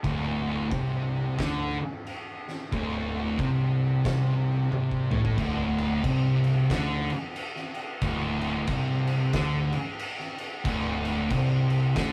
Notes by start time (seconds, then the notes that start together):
0.03 D1 D2, kick, crash
0.71 C2 C3, kick, crash
1.38 D2 D3, kick, snare, crash
2.06 crash
2.48 snare
2.72 D1 D2, kick, crash
3.39 C2 C3, kick, crash
4.05 C2 C3, kick, snare, crash
4.72 C2 C3, high tom
4.91 kick
5.11 A1 A2, mid tom
5.25 kick
5.37 D1 D2, kick, crash
5.78 crash
6.04 C2 C3, kick, crash
6.44 crash
6.70 D2 D3, kick, snare, crash
7.10 crash
7.36 crash
7.56 snare
7.74 crash
8.01 D1 D2, kick, crash
8.41 crash
8.67 C2 C3, kick, crash
9.07 crash
9.33 D2 D3, kick, snare, crash
9.72 crash
9.99 crash
10.20 snare
10.38 crash
10.64 D1 D2, kick, crash
11.05 crash
11.30 C2 C3, kick, crash
11.70 crash
11.95 D2 D3, kick, snare, crash